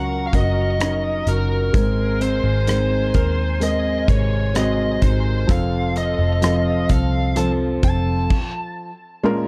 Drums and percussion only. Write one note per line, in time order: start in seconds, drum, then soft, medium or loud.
0.33 kick medium
0.33 closed hi-hat medium
0.81 cross-stick loud
0.81 closed hi-hat medium
1.27 closed hi-hat medium
1.74 kick loud
1.74 closed hi-hat medium
2.21 closed hi-hat medium
2.67 cross-stick medium
2.67 closed hi-hat medium
3.14 kick medium
3.14 closed hi-hat medium
3.61 closed hi-hat medium
4.08 kick medium
4.08 closed hi-hat soft
4.55 cross-stick medium
4.55 closed hi-hat medium
5.02 kick medium
5.02 closed hi-hat medium
5.49 kick loud
5.49 closed hi-hat medium
5.96 closed hi-hat medium
6.42 cross-stick medium
6.42 closed hi-hat medium
6.89 kick medium
6.89 closed hi-hat medium
7.36 closed hi-hat medium
7.83 kick medium
7.83 closed hi-hat medium
8.30 kick medium
8.30 crash medium